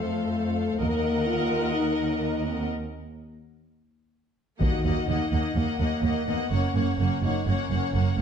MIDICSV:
0, 0, Header, 1, 9, 480
1, 0, Start_track
1, 0, Tempo, 476190
1, 807, Time_signature, 4, 2, 24, 8
1, 8283, End_track
2, 0, Start_track
2, 0, Title_t, "Violin section"
2, 0, Program_c, 0, 48
2, 0, Note_on_c, 0, 77, 40
2, 765, Note_off_c, 0, 77, 0
2, 815, Note_on_c, 0, 78, 54
2, 2691, Note_off_c, 0, 78, 0
2, 4646, Note_on_c, 0, 78, 42
2, 4882, Note_off_c, 0, 78, 0
2, 4892, Note_on_c, 0, 78, 40
2, 5125, Note_off_c, 0, 78, 0
2, 5136, Note_on_c, 0, 78, 43
2, 5347, Note_off_c, 0, 78, 0
2, 5359, Note_on_c, 0, 78, 39
2, 5587, Note_off_c, 0, 78, 0
2, 5599, Note_on_c, 0, 78, 41
2, 5834, Note_off_c, 0, 78, 0
2, 5846, Note_on_c, 0, 78, 43
2, 6073, Note_off_c, 0, 78, 0
2, 6085, Note_on_c, 0, 78, 43
2, 6318, Note_off_c, 0, 78, 0
2, 6330, Note_on_c, 0, 78, 40
2, 6554, Note_off_c, 0, 78, 0
2, 6566, Note_on_c, 0, 78, 45
2, 6796, Note_off_c, 0, 78, 0
2, 6808, Note_on_c, 0, 78, 36
2, 7037, Note_off_c, 0, 78, 0
2, 7049, Note_on_c, 0, 78, 37
2, 7284, Note_off_c, 0, 78, 0
2, 7298, Note_on_c, 0, 78, 35
2, 7514, Note_off_c, 0, 78, 0
2, 7526, Note_on_c, 0, 78, 40
2, 7752, Note_off_c, 0, 78, 0
2, 7764, Note_on_c, 0, 78, 39
2, 8001, Note_off_c, 0, 78, 0
2, 8016, Note_on_c, 0, 78, 39
2, 8242, Note_off_c, 0, 78, 0
2, 8283, End_track
3, 0, Start_track
3, 0, Title_t, "Violin section"
3, 0, Program_c, 1, 48
3, 0, Note_on_c, 1, 72, 39
3, 765, Note_off_c, 1, 72, 0
3, 820, Note_on_c, 1, 75, 52
3, 2693, Note_off_c, 1, 75, 0
3, 4643, Note_on_c, 1, 75, 42
3, 4880, Note_off_c, 1, 75, 0
3, 4893, Note_on_c, 1, 75, 41
3, 5126, Note_off_c, 1, 75, 0
3, 5142, Note_on_c, 1, 75, 37
3, 5362, Note_off_c, 1, 75, 0
3, 5374, Note_on_c, 1, 75, 37
3, 5602, Note_off_c, 1, 75, 0
3, 5614, Note_on_c, 1, 75, 40
3, 5842, Note_off_c, 1, 75, 0
3, 5854, Note_on_c, 1, 75, 38
3, 6084, Note_off_c, 1, 75, 0
3, 6096, Note_on_c, 1, 75, 40
3, 6319, Note_off_c, 1, 75, 0
3, 6331, Note_on_c, 1, 75, 40
3, 6565, Note_off_c, 1, 75, 0
3, 6569, Note_on_c, 1, 73, 42
3, 6804, Note_off_c, 1, 73, 0
3, 6815, Note_on_c, 1, 73, 42
3, 7040, Note_off_c, 1, 73, 0
3, 7052, Note_on_c, 1, 73, 39
3, 7285, Note_off_c, 1, 73, 0
3, 7306, Note_on_c, 1, 73, 39
3, 7532, Note_off_c, 1, 73, 0
3, 7543, Note_on_c, 1, 73, 44
3, 7767, Note_off_c, 1, 73, 0
3, 7779, Note_on_c, 1, 73, 41
3, 8009, Note_off_c, 1, 73, 0
3, 8021, Note_on_c, 1, 73, 41
3, 8250, Note_off_c, 1, 73, 0
3, 8283, End_track
4, 0, Start_track
4, 0, Title_t, "French horn section"
4, 0, Program_c, 2, 60
4, 0, Note_on_c, 2, 57, 71
4, 801, Note_off_c, 2, 57, 0
4, 808, Note_on_c, 2, 58, 73
4, 1278, Note_on_c, 2, 65, 94
4, 1288, Note_off_c, 2, 58, 0
4, 1759, Note_on_c, 2, 63, 69
4, 1763, Note_off_c, 2, 65, 0
4, 2484, Note_off_c, 2, 63, 0
4, 2487, Note_on_c, 2, 60, 49
4, 2722, Note_off_c, 2, 60, 0
4, 4643, Note_on_c, 2, 66, 59
4, 5092, Note_off_c, 2, 66, 0
4, 5116, Note_on_c, 2, 63, 60
4, 5599, Note_on_c, 2, 58, 59
4, 5602, Note_off_c, 2, 63, 0
4, 6309, Note_off_c, 2, 58, 0
4, 6315, Note_on_c, 2, 59, 56
4, 6557, Note_off_c, 2, 59, 0
4, 6570, Note_on_c, 2, 61, 68
4, 7289, Note_off_c, 2, 61, 0
4, 7294, Note_on_c, 2, 63, 59
4, 7531, Note_off_c, 2, 63, 0
4, 7535, Note_on_c, 2, 61, 61
4, 8237, Note_off_c, 2, 61, 0
4, 8283, End_track
5, 0, Start_track
5, 0, Title_t, "Viola section"
5, 0, Program_c, 3, 48
5, 0, Note_on_c, 3, 69, 42
5, 767, Note_off_c, 3, 69, 0
5, 806, Note_on_c, 3, 70, 56
5, 2687, Note_off_c, 3, 70, 0
5, 4644, Note_on_c, 3, 58, 42
5, 4881, Note_off_c, 3, 58, 0
5, 4893, Note_on_c, 3, 58, 38
5, 5115, Note_off_c, 3, 58, 0
5, 5127, Note_on_c, 3, 58, 44
5, 5352, Note_off_c, 3, 58, 0
5, 5364, Note_on_c, 3, 58, 39
5, 5593, Note_off_c, 3, 58, 0
5, 5606, Note_on_c, 3, 58, 39
5, 5829, Note_off_c, 3, 58, 0
5, 5841, Note_on_c, 3, 58, 40
5, 6070, Note_off_c, 3, 58, 0
5, 6082, Note_on_c, 3, 58, 44
5, 6306, Note_off_c, 3, 58, 0
5, 6318, Note_on_c, 3, 58, 38
5, 6553, Note_off_c, 3, 58, 0
5, 6565, Note_on_c, 3, 58, 46
5, 6799, Note_off_c, 3, 58, 0
5, 6811, Note_on_c, 3, 58, 38
5, 7045, Note_off_c, 3, 58, 0
5, 7056, Note_on_c, 3, 58, 45
5, 7279, Note_off_c, 3, 58, 0
5, 7291, Note_on_c, 3, 58, 39
5, 7519, Note_off_c, 3, 58, 0
5, 7531, Note_on_c, 3, 58, 43
5, 7759, Note_off_c, 3, 58, 0
5, 7771, Note_on_c, 3, 58, 41
5, 7997, Note_off_c, 3, 58, 0
5, 8009, Note_on_c, 3, 58, 43
5, 8227, Note_off_c, 3, 58, 0
5, 8239, Note_on_c, 3, 58, 41
5, 8283, Note_off_c, 3, 58, 0
5, 8283, End_track
6, 0, Start_track
6, 0, Title_t, "Timpani"
6, 0, Program_c, 4, 47
6, 4642, Note_on_c, 4, 51, 61
6, 5325, Note_off_c, 4, 51, 0
6, 8283, End_track
7, 0, Start_track
7, 0, Title_t, "Cello section"
7, 0, Program_c, 5, 48
7, 0, Note_on_c, 5, 41, 38
7, 767, Note_off_c, 5, 41, 0
7, 817, Note_on_c, 5, 39, 57
7, 2694, Note_off_c, 5, 39, 0
7, 4643, Note_on_c, 5, 39, 42
7, 4723, Note_off_c, 5, 39, 0
7, 4882, Note_on_c, 5, 39, 43
7, 4962, Note_off_c, 5, 39, 0
7, 5123, Note_on_c, 5, 39, 43
7, 5203, Note_off_c, 5, 39, 0
7, 5362, Note_on_c, 5, 39, 41
7, 5443, Note_off_c, 5, 39, 0
7, 5603, Note_on_c, 5, 39, 43
7, 5684, Note_off_c, 5, 39, 0
7, 5848, Note_on_c, 5, 39, 48
7, 5929, Note_off_c, 5, 39, 0
7, 6086, Note_on_c, 5, 39, 48
7, 6167, Note_off_c, 5, 39, 0
7, 6333, Note_on_c, 5, 39, 45
7, 6414, Note_off_c, 5, 39, 0
7, 6569, Note_on_c, 5, 42, 46
7, 6649, Note_off_c, 5, 42, 0
7, 6816, Note_on_c, 5, 42, 48
7, 6896, Note_off_c, 5, 42, 0
7, 7057, Note_on_c, 5, 42, 47
7, 7138, Note_off_c, 5, 42, 0
7, 7286, Note_on_c, 5, 42, 44
7, 7366, Note_off_c, 5, 42, 0
7, 7526, Note_on_c, 5, 42, 48
7, 7606, Note_off_c, 5, 42, 0
7, 7766, Note_on_c, 5, 42, 43
7, 7847, Note_off_c, 5, 42, 0
7, 8007, Note_on_c, 5, 42, 50
7, 8088, Note_off_c, 5, 42, 0
7, 8245, Note_on_c, 5, 42, 47
7, 8283, Note_off_c, 5, 42, 0
7, 8283, End_track
8, 0, Start_track
8, 0, Title_t, "Double bass section"
8, 0, Program_c, 6, 48
8, 810, Note_on_c, 6, 39, 58
8, 1255, Note_off_c, 6, 39, 0
8, 4639, Note_on_c, 6, 39, 49
8, 4720, Note_off_c, 6, 39, 0
8, 4881, Note_on_c, 6, 39, 44
8, 4962, Note_off_c, 6, 39, 0
8, 5125, Note_on_c, 6, 39, 44
8, 5206, Note_off_c, 6, 39, 0
8, 5366, Note_on_c, 6, 39, 42
8, 5446, Note_off_c, 6, 39, 0
8, 5594, Note_on_c, 6, 39, 44
8, 5674, Note_off_c, 6, 39, 0
8, 5836, Note_on_c, 6, 39, 46
8, 5917, Note_off_c, 6, 39, 0
8, 6080, Note_on_c, 6, 39, 50
8, 6161, Note_off_c, 6, 39, 0
8, 6321, Note_on_c, 6, 39, 44
8, 6402, Note_off_c, 6, 39, 0
8, 6556, Note_on_c, 6, 30, 55
8, 6637, Note_off_c, 6, 30, 0
8, 6806, Note_on_c, 6, 30, 46
8, 6887, Note_off_c, 6, 30, 0
8, 7045, Note_on_c, 6, 30, 43
8, 7125, Note_off_c, 6, 30, 0
8, 7285, Note_on_c, 6, 30, 46
8, 7366, Note_off_c, 6, 30, 0
8, 7526, Note_on_c, 6, 30, 47
8, 7607, Note_off_c, 6, 30, 0
8, 7764, Note_on_c, 6, 30, 46
8, 7845, Note_off_c, 6, 30, 0
8, 8002, Note_on_c, 6, 30, 51
8, 8082, Note_off_c, 6, 30, 0
8, 8241, Note_on_c, 6, 30, 44
8, 8283, Note_off_c, 6, 30, 0
8, 8283, End_track
9, 0, Start_track
9, 0, Title_t, "Taiko and cinematic ensemble drums"
9, 4647, Note_on_c, 9, 41, 51
9, 4747, Note_off_c, 9, 41, 0
9, 8283, End_track
0, 0, End_of_file